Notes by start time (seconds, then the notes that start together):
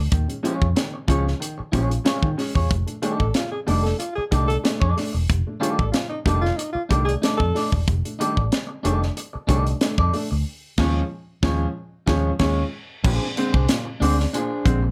0.12 D#2 D#3, kick, closed hi-hat
0.28 G#3 C#4, closed hi-hat
0.43 F3 G#3 C#4 F4 G#4 C#5, closed hi-hat
0.62 F2, kick
0.76 D#3, muted clean electric guitar stroke, snare, closed hi-hat
0.94 muted clean electric guitar stroke
1.08 C#2 F3 G#3 C#4 F4 G#4 C#5, kick, closed hi-hat
1.26 G#3 C#4, muted clean electric guitar stroke, snare
1.40 D#3, muted clean electric guitar stroke, closed hi-hat
1.58 muted clean electric guitar stroke, muted fingered electric bass stroke
1.72 A#1 F3 G#3 C#4 F4 G#4 C#5, kick, closed hi-hat
1.90 G#3 C#4, muted clean electric guitar stroke, closed hi-hat
2.04 G#3 C#4 F4 G#4 C#5, snare, closed hi-hat
2.22 D#3, kick
2.37 G#3 C#4, muted clean electric guitar stroke, snare, open hi-hat
2.55 E2 F4 G#4 C#5, kick
2.71 F1, kick, closed hi-hat
2.87 A3 D4, closed hi-hat
3.02 D#3 G3 A3 D4 D#4 A4 D5, closed hi-hat
3.19 A1 A4, kick
3.34 F4, muted clean electric guitar stroke, snare, closed hi-hat
3.51 G#4, muted clean electric guitar stroke
3.67 F1 D#3 G3 A3 D4 D#4 A4 D5, open hi-hat
3.83 A3 D4 A4, muted clean electric guitar stroke, snare
3.98 F4, muted clean electric guitar stroke, closed hi-hat
4.15 G#4, muted clean electric guitar stroke, muted fingered electric bass stroke
4.31 C2 D#3 G3 A3 D4 D#4 A4 D5, kick, closed hi-hat
4.48 A3 D4 A4, muted clean electric guitar stroke, closed hi-hat
4.64 A3 D4, muted clean electric guitar stroke, snare, closed hi-hat
4.80 F2 D#4 A4 D5, kick
4.96 A3 D4, muted clean electric guitar stroke, snare, open hi-hat
5.13 E1, muted clean electric guitar stroke
5.30 F1, kick, closed hi-hat
5.47 A3 D4
5.60 D#3 G3 A3 D4 D#4 F4 A4 D5, closed hi-hat
5.78 A1 A4, kick
5.91 F4, muted clean electric guitar stroke, snare, closed hi-hat
6.09 D#4, muted clean electric guitar stroke
6.25 F1 D#3 G3 A3 D4 D#4 A4 D5, kick, closed hi-hat
6.41 A3 D4 F4, muted clean electric guitar stroke
6.45 snare
6.56 D#4, muted clean electric guitar stroke, closed hi-hat
6.73 F4, muted clean electric guitar stroke, muted fingered electric bass stroke
6.89 C2 D#3 G3 A3 D4 D#4 A4 D5, kick, closed hi-hat
7.05 A3 D4 G#4, muted clean electric guitar stroke, closed hi-hat
7.22 A3 D4 D#4 A4 D5, snare, closed hi-hat
7.37 F2 A4, muted clean electric guitar stroke, kick
7.54 A3 D4 D#4 A4 D5, snare, open hi-hat
7.72 E1, muted clean electric guitar stroke, kick
7.88 F1, kick, closed hi-hat
8.05 A3 D4, closed hi-hat
8.19 D#3 G3 A3 D4 D#4 A4 D5, closed hi-hat
8.37 A1, kick
8.51 muted clean electric guitar stroke, snare, closed hi-hat
8.67 muted clean electric guitar stroke
8.83 F1 D#3 G3 A3 D4 D#4 A4 D5, closed hi-hat
9.01 A3 D4, muted clean electric guitar stroke, snare
9.17 muted clean electric guitar stroke, closed hi-hat
9.33 muted clean electric guitar stroke, muted fingered electric bass stroke
9.47 C2 D#3 G3 A3 D4 D#4 A4 D5, kick, closed hi-hat
9.66 A3 D4, muted clean electric guitar stroke, closed hi-hat
9.81 A3 D4, muted clean electric guitar stroke, snare, closed hi-hat
9.98 F2 D#4 A4 D5, kick
10.13 A3 D4, muted clean electric guitar stroke, open hi-hat
10.31 D2, muted clean electric guitar stroke
10.78 D#2 F3 G#3 C#4 F4 G#4 C#5, kick, snare, crash
11.43 D#2 F3 G#3 C#4 F4 G#4 C#5, kick, snare
12.06 D#2 F3 G#3 C#4 F4 G#4 C#5, kick, snare
12.39 D#2 G#3 C#4 F4 G#4 C#5, kick, snare, crash
13.04 A#1 A#2 D4 G#4 C5, kick, crash
13.23 G#3 C4
13.36 D3 G#3 C4, muted clean electric guitar stroke, closed hi-hat
13.53 C2 D4 G#4 C5, kick
13.68 A#2, muted clean electric guitar stroke, snare, closed hi-hat
13.85 muted clean electric guitar stroke
14.00 D2 D3 G#3 C4 D4 G#4 D5, open hi-hat
14.18 G#3 C4, muted clean electric guitar stroke, snare
14.33 A#2 D4 G#4 C5, closed hi-hat
14.65 A#1 D3 G#3 C4, kick, closed hi-hat
14.83 G#3 C4, muted clean electric guitar stroke